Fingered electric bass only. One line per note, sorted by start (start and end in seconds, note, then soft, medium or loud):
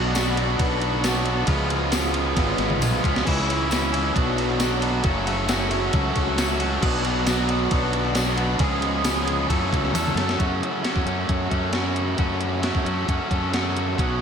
0.00 0.55 B1 loud
0.59 1.44 B1 loud
1.47 2.33 C#2 loud
2.36 2.57 G#1 medium
2.58 2.79 G#1 medium
2.79 3.00 B1 medium
3.04 3.24 C#2 medium
3.27 4.11 C#2 loud
4.16 5.00 B1 medium
5.04 5.89 F#1 medium
5.93 6.14 C#2 loud
6.16 6.78 C#2 medium
6.82 7.67 B1 loud
7.71 8.56 B1 loud
8.59 9.45 C#2 loud
9.49 9.70 F#2 medium
9.72 9.92 C#2 loud
9.92 10.13 E2 medium
10.15 10.36 F#2 medium
10.40 10.60 F#2 medium
10.96 11.04 F#2 medium
11.05 11.26 F#2 medium
11.29 11.50 F#2 medium
11.51 12.14 F#2 medium
12.18 12.71 F#2 medium
12.75 12.83 F#2 medium
12.84 13.06 F#2 medium
13.08 13.18 F#2 loud
13.31 13.94 F#2 medium
13.98 14.19 B1 medium